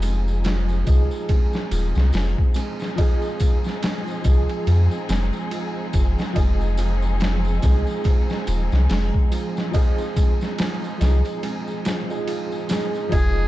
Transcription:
Already playing: sub bass F1, felt piano F3 G3 F4, upright piano F3 D#4 G#5, string section F3 C4 D#4 G#4
0.02 felt piano G#3, ride, tambourine
0.28 tambourine
0.44 felt piano F3, snare, ride, tambourine
0.69 tambourine
0.84 sub bass C2, upright piano F3 D#4, felt piano F3, kick, ride, tambourine
0.90 upright piano G#4
1.11 tambourine
1.29 felt piano G#3, kick, ride, tambourine
1.53 snare, tambourine
1.71 sub bass D#1, felt piano F3, ride, tambourine
1.95 sub bass C2, snare, tambourine
2.13 sub bass F1, felt piano F3, snare, open hi-hat, tambourine
2.38 kick
2.54 felt piano G#3, ride, tambourine
2.80 snare, tambourine
2.96 upright piano F3 D#4, felt piano F3, kick, ride, tambourine
3.01 upright piano G#4
3.22 tambourine
3.40 felt piano F3, kick, ride, tambourine
3.64 snare, tambourine
3.82 felt piano G#3, snare, ride, tambourine
4.08 tambourine
4.22 sub bass C2, upright piano F3 D#4, felt piano F3, kick, ride, tambourine
4.28 upright piano G#4
4.49 ride, tambourine
4.67 sub bass F2, felt piano F3, ride, tambourine
4.91 tambourine
5.09 sub bass F1, felt piano G#3, snare, ride, tambourine
5.33 tambourine
5.51 felt piano F3, ride, tambourine
5.93 sub bass F1, felt piano F3, kick, ride, tambourine
6.18 snare, tambourine
6.33 sub bass F1, upright piano F3 D#4, felt piano G#3, kick, ride, tambourine
6.38 upright piano G#4
6.61 tambourine
6.77 felt piano F3, ride, tambourine
7.02 tambourine
7.20 felt piano F3, snare, ride, tambourine
7.45 tambourine
7.60 sub bass C2, upright piano F3 D#4, felt piano G#3, kick, ride, tambourine
7.65 upright piano G#4
7.87 tambourine
8.04 felt piano F3, kick, ride, tambourine
8.30 snare, tambourine
8.47 sub bass D#1, felt piano F3, ride, tambourine
8.72 sub bass C2, snare, tambourine
8.90 sub bass F1, felt piano G#3, snare, open hi-hat, tambourine
9.14 kick
9.31 felt piano F3, ride, tambourine
9.57 snare, tambourine
9.71 upright piano F3 D#4, felt piano F3, kick, ride, tambourine
9.76 upright piano G#4
9.98 tambourine
10.16 felt piano G#3, kick, ride, tambourine
10.41 snare, tambourine
10.58 felt piano F3, snare, ride, tambourine
10.84 tambourine
10.98 sub bass C2, upright piano F3 D#4, felt piano F3, ride, tambourine
11.02 upright piano G#4, snare
11.25 ride, tambourine
11.43 felt piano G#3, ride, tambourine
11.68 tambourine
11.85 felt piano F3, snare, ride, tambourine
12.09 upright piano F3 D#4 G#4, tambourine
12.27 felt piano F3, ride, tambourine
12.52 tambourine
12.69 upright piano F3 D#4 G#4, felt piano G#3, snare, ride, tambourine
12.95 tambourine
13.09 sub bass F1, upright piano F3 D#4, felt piano F3, string section F3 G#3 C4 D#4, muted trumpet G#4, kick, ride, tambourine
13.15 upright piano G#4

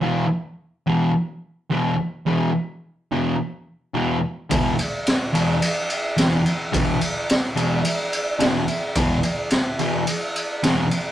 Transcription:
0.02 distorted electric guitar E2 B2 E3
0.87 distorted electric guitar E2 B2 E3
1.71 distorted electric guitar E2 B2 E3
2.26 distorted electric guitar E2 B2 E3
3.12 distorted electric guitar E2 B2 E3
3.94 distorted electric guitar E2 B2 E3
4.50 distorted electric guitar E2 B2 E3, kick, ride
4.79 ride
5.07 snare, ride
5.33 distorted electric guitar E2 B2 E3, ride
5.62 ride
5.90 ride
6.17 distorted electric guitar E2 B2 E3, snare, ride
6.46 ride
6.72 distorted electric guitar E2 B2 E3, kick, ride
7.01 ride
7.29 snare, ride
7.56 distorted electric guitar E2 B2 E3, ride
7.85 ride
8.13 ride
8.39 distorted electric guitar E2 B2 E3, snare, ride
8.68 ride
8.95 distorted electric guitar E2 B2 E3, kick, ride
9.23 ride
9.50 snare, ride
9.79 distorted electric guitar E2 B2 E3, ride
10.07 ride
10.36 ride
10.63 distorted electric guitar E2 B2 E3, snare, ride
10.91 ride

